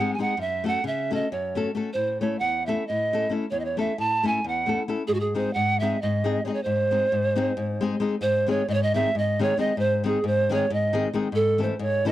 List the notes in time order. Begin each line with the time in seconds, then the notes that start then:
Already playing: F#5
0.00 G#3 C4 D#4 G#4
0.14 G#5
0.19 G#3 C4 D#4 G#4 F#5
0.37 F#2 E5
0.64 A3 C#4 F#4 A4 F#5
0.84 C#3 E5
1.11 A3 C#4 F#4 A4 D#5
1.32 F#2 C#5
1.55 A3 C#4 F#4 A4
1.75 A3 C#4 F#4 A4
1.93 A2 C5
2.20 A3 C#4 E4 A4 C#5
2.39 E2 F#5
2.66 A3 C#4 E4 A4 E5
2.87 A2 D#5
3.13 A3 C#4 E4 A4
3.29 A3 C#4 E4 A4
3.51 E2 C#5
3.60 D#5
3.65 C#5
3.77 A3 C#4 E4 A4 E5
3.98 A2 A5
4.23 A3 C#4 E4 A4 G#5
4.44 E2 F#5
4.66 A3 C#4 E4 A4
4.88 A3 C#4 E4 A4
5.08 G#2 G#4
5.14 F#4
5.20 G#4
5.35 G#3 C4 D#4 G#4 C5
5.53 G#2 F#5
5.80 G#3 C4 D#4 G#4 E5
6.02 G#2 D#5
6.24 G#3 C4 D#4 G#4
6.45 G#3 C4 D#4 G#4 C#5 D#5
6.54 C#5
6.63 G#2 C5
6.91 G#3 C4 D#4 G#4
7.12 G#2
7.36 G#3 C4 D#4 G#4
7.57 G#2
7.81 G#3 C4 D#4 G#4
8.00 G#3 C4 D#4 G#4
8.21 G#2 C5
8.47 D#3 G#3 C4 D#4 G#4 C#5
8.68 G#2 D#5
8.74 C#5
8.83 D#5
8.94 D#3 G#3 C4 D#4 G#4 E5
9.15 G#2 D#5
9.39 D#3 G#3 C4 D#4 G#4 C#5
9.57 D#3 G#3 C4 D#4 G#4 D#5
9.77 G#2 C5
10.04 D#3 G#3 C4 D#4 G#4
10.24 G#2 C5
10.49 D#3 G#3 C4 D#4 G#4 C#5
10.70 G#2 D#5
10.93 D#3 G#3 C4 D#4 G#4
11.14 D#3 G#3 C4 D#4 G#4
11.32 G#2 A4
11.58 E3 A3 C#4 E4 A4
11.63 C5
11.79 G#2 C#5
12.05 E3 A3 C#4 E4 A4 D#5